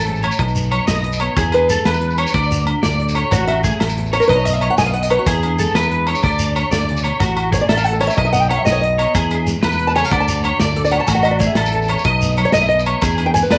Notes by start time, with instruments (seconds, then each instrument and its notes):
Already playing: fingered electric bass A1, nylon-string guitar A2 A3 C#4 F#4, clean electric guitar A4
0.07 nylon-string guitar G#2, closed hi-hat
0.15 shekere
0.23 nylon-string guitar A2, clean electric guitar C#5, closed hi-hat, low agogo, shekere
0.31 shekere
0.39 fingered electric bass B1, nylon-string guitar B2 D#4, muted clean electric guitar stroke, kick, closed hi-hat, low agogo
0.48 shekere
0.55 nylon-string guitar B3, closed hi-hat, shekere
0.63 shekere
0.71 nylon-string guitar F#3, clean electric guitar C#5, closed hi-hat, low agogo
0.87 fingered electric bass B1, nylon-string guitar B4, clean electric guitar D#5, snare, closed hi-hat, shekere
0.96 shekere
1.04 nylon-string guitar B2, closed hi-hat
1.13 shekere
1.20 nylon-string guitar B3, clean electric guitar C#5, closed hi-hat, low agogo
1.37 fingered electric bass E2, nylon-string guitar E2 E4, steel-string acoustic guitar G#4, clean electric guitar G#4, kick, closed hi-hat, low agogo, shekere
1.52 nylon-string guitar D4, steel-string acoustic guitar B4, closed hi-hat, low agogo, shekere
1.69 nylon-string guitar G#3, clean electric guitar A4, closed hi-hat, shekere
1.85 fingered electric bass E2, nylon-string guitar G#4, clean electric guitar B4, snare, closed hi-hat, low agogo
1.93 shekere
2.01 nylon-string guitar E2, closed hi-hat
2.10 shekere
2.18 nylon-string guitar D4, clean electric guitar C#5, closed hi-hat, low agogo, shekere
2.27 shekere
2.34 fingered electric bass D2, nylon-string guitar D3, clean electric guitar D5, muted nylon-string guitar stroke, kick, closed hi-hat, low agogo
2.43 shekere
2.50 nylon-string guitar F#4, closed hi-hat, shekere
2.60 shekere
2.66 nylon-string guitar D4, closed hi-hat, low agogo
2.83 fingered electric bass D2, nylon-string guitar A4, clean electric guitar D5, snare, closed hi-hat, shekere
2.92 shekere
2.99 nylon-string guitar A2, closed hi-hat
3.09 shekere
3.15 nylon-string guitar F#4, clean electric guitar C#5, closed hi-hat, low agogo
3.31 fingered electric bass A1, nylon-string guitar A2 F#4, clean electric guitar F#4, steel-string acoustic guitar C#5, kick, closed hi-hat, low agogo, shekere
3.47 nylon-string guitar C#4, steel-string acoustic guitar E5, closed hi-hat, low agogo, shekere
3.64 nylon-string guitar A3, clean electric guitar G#4, kick, closed hi-hat, shekere
3.80 fingered electric bass A1, nylon-string guitar A4, muted clean electric guitar stroke, snare, closed hi-hat, low agogo
3.89 shekere
3.97 nylon-string guitar E2, closed hi-hat
4.06 shekere
4.13 nylon-string guitar C#4, steel-string acoustic guitar C#5, clean electric guitar C#5, closed hi-hat, low agogo, shekere
4.20 steel-string acoustic guitar A#4, shekere
4.28 fingered electric bass B1, nylon-string guitar B2 D#4, steel-string acoustic guitar B4, clean electric guitar D#5, kick, closed hi-hat, low agogo
4.35 steel-string acoustic guitar C#5, shekere
4.45 nylon-string guitar B3, steel-string acoustic guitar D#5, closed hi-hat, shekere
4.53 steel-string acoustic guitar E5, shekere
4.60 nylon-string guitar F#3, clean electric guitar C#5, steel-string acoustic guitar D#5, closed hi-hat, low agogo
4.70 steel-string acoustic guitar F#5
4.77 fingered electric bass B1, nylon-string guitar B4, clean electric guitar D#5, steel-string acoustic guitar G#5, snare, closed hi-hat, shekere
4.86 steel-string acoustic guitar F5, shekere
4.94 nylon-string guitar B2, steel-string acoustic guitar F#5, closed hi-hat
5.03 steel-string acoustic guitar D#5, shekere
5.10 nylon-string guitar B3, steel-string acoustic guitar B4, clean electric guitar C#5, closed hi-hat, low agogo
5.19 steel-string acoustic guitar F#4
5.26 nylon-string guitar E2 E4, fingered electric bass E2, clean electric guitar G#4, steel-string acoustic guitar G#4, kick, closed hi-hat, low agogo, shekere
5.43 nylon-string guitar D4, closed hi-hat, low agogo
5.59 nylon-string guitar G#3, clean electric guitar A4, closed hi-hat, shekere
5.67 shekere
5.75 fingered electric bass E2, nylon-string guitar E4, clean electric guitar B4, snare, closed hi-hat, low agogo
5.82 shekere
5.91 nylon-string guitar E2, closed hi-hat
6.07 nylon-string guitar D4, clean electric guitar C#5, closed hi-hat, low agogo
6.15 shekere
6.23 fingered electric bass D2, nylon-string guitar D3 A4, clean electric guitar D5, kick, closed hi-hat, low agogo
6.32 shekere
6.39 nylon-string guitar F#4, closed hi-hat, shekere
6.56 nylon-string guitar D4, clean electric guitar C#5, closed hi-hat, low agogo, shekere
6.71 fingered electric bass D2, nylon-string guitar D3, clean electric guitar D5, snare, closed hi-hat, shekere
6.81 shekere
6.89 nylon-string guitar C#3, closed hi-hat
6.97 shekere
7.04 nylon-string guitar B2, clean electric guitar C#5, closed hi-hat, low agogo
7.20 fingered electric bass A1, nylon-string guitar A2, clean electric guitar F#4, muted nylon-string guitar stroke, kick, closed hi-hat, low agogo, shekere
7.36 nylon-string guitar C#4, closed hi-hat, low agogo, shekere
7.51 nylon-string guitar A3, clean electric guitar G#4, steel-string acoustic guitar C#5, kick, closed hi-hat, shekere
7.61 steel-string acoustic guitar D5
7.69 fingered electric bass A1, nylon-string guitar A4, clean electric guitar A4, steel-string acoustic guitar E5, snare, closed hi-hat, low agogo
7.77 steel-string acoustic guitar F5, shekere
7.84 steel-string acoustic guitar F#5, closed hi-hat
7.93 steel-string acoustic guitar A4, shekere
8.00 nylon-string guitar C#4, steel-string acoustic guitar C#5, clean electric guitar C#5, snare, closed hi-hat, low agogo, shekere
8.07 steel-string acoustic guitar E5, shekere
8.17 fingered electric bass B1, nylon-string guitar B2 D#4, steel-string acoustic guitar D#5, clean electric guitar D#5, kick, closed hi-hat, low agogo
8.25 steel-string acoustic guitar E5, shekere
8.33 nylon-string guitar B3, steel-string acoustic guitar F#5, closed hi-hat, shekere
8.41 steel-string acoustic guitar G5, shekere
8.49 nylon-string guitar F#3, clean electric guitar C#5, steel-string acoustic guitar F#5, closed hi-hat, low agogo
8.58 steel-string acoustic guitar E5
8.65 fingered electric bass B1, nylon-string guitar B4, steel-string acoustic guitar D#5, clean electric guitar D#5, snare, closed hi-hat, shekere
8.72 steel-string acoustic guitar C#5, shekere
8.81 nylon-string guitar B2, steel-string acoustic guitar D#5, closed hi-hat
8.98 nylon-string guitar B3, clean electric guitar C#5, closed hi-hat, low agogo
9.14 nylon-string guitar E2 E4, fingered electric bass E2, clean electric guitar G#4, kick, closed hi-hat, low agogo, shekere
9.31 nylon-string guitar D4, closed hi-hat, low agogo, shekere
9.47 nylon-string guitar G#3, closed hi-hat, shekere
9.62 fingered electric bass E2, nylon-string guitar A2, clean electric guitar B4, snare, closed hi-hat, low agogo
9.72 shekere
9.79 nylon-string guitar B2, closed hi-hat
9.87 steel-string acoustic guitar A5, shekere
9.96 nylon-string guitar C#3, clean electric guitar C#5, steel-string acoustic guitar G#5, snare, closed hi-hat, low agogo, shekere
10.04 steel-string acoustic guitar F5, shekere
10.11 fingered electric bass D2, nylon-string guitar D3, clean electric guitar D5, steel-string acoustic guitar F#5, muted nylon-string guitar stroke, kick, closed hi-hat, low agogo
10.20 steel-string acoustic guitar A5, shekere
10.28 nylon-string guitar F#4, closed hi-hat, shekere
10.37 shekere
10.44 nylon-string guitar D4, clean electric guitar C#5, closed hi-hat, low agogo
10.60 fingered electric bass D2, nylon-string guitar A4, clean electric guitar D5, snare, closed hi-hat, shekere
10.69 shekere
10.76 nylon-string guitar A2, steel-string acoustic guitar A4, closed hi-hat
10.85 steel-string acoustic guitar D5, shekere
10.91 nylon-string guitar F#4, clean electric guitar C#5, steel-string acoustic guitar F#5, closed hi-hat, low agogo
11.00 steel-string acoustic guitar A5
11.08 fingered electric bass A1, nylon-string guitar A2 F#4, clean electric guitar F#4, steel-string acoustic guitar G#5, kick, closed hi-hat, low agogo, shekere
11.15 steel-string acoustic guitar F#5
11.23 steel-string acoustic guitar D#5, closed hi-hat, low agogo, shekere
11.31 steel-string acoustic guitar D5
11.39 nylon-string guitar A3, clean electric guitar G#4, steel-string acoustic guitar C#5, kick, closed hi-hat, shekere
11.46 steel-string acoustic guitar E5
11.55 fingered electric bass A1, clean electric guitar A4, nylon-string guitar A4, snare, closed hi-hat, low agogo
11.66 shekere
11.72 nylon-string guitar E2, closed hi-hat
11.82 shekere
11.88 nylon-string guitar C#4, clean electric guitar C#5, closed hi-hat, low agogo, shekere
11.98 shekere
12.04 fingered electric bass B1, nylon-string guitar B2 D#4, clean electric guitar D#5, kick, closed hi-hat, low agogo
12.21 nylon-string guitar B3, closed hi-hat, shekere
12.31 shekere
12.37 nylon-string guitar F#3, clean electric guitar C#5, closed hi-hat, low agogo
12.45 steel-string acoustic guitar C#5
12.52 fingered electric bass B1, nylon-string guitar B4, steel-string acoustic guitar D#5, clean electric guitar D#5, snare, closed hi-hat, shekere
12.61 steel-string acoustic guitar E5, shekere
12.69 nylon-string guitar B2, steel-string acoustic guitar D#5, closed hi-hat
12.79 shekere
12.86 nylon-string guitar B3, clean electric guitar C#5, closed hi-hat, low agogo
13.01 nylon-string guitar E2 E4, fingered electric bass E2, clean electric guitar G#4, kick, closed hi-hat, low agogo, shekere
13.11 shekere
13.18 nylon-string guitar D4, closed hi-hat, low agogo, shekere
13.26 steel-string acoustic guitar G5
13.34 nylon-string guitar G#3, steel-string acoustic guitar G#5, muted clean electric guitar stroke, closed hi-hat, shekere
13.43 steel-string acoustic guitar B4, shekere
13.51 fingered electric bass E2, nylon-string guitar G#4, clean electric guitar B4, steel-string acoustic guitar D5, snare, closed hi-hat, low agogo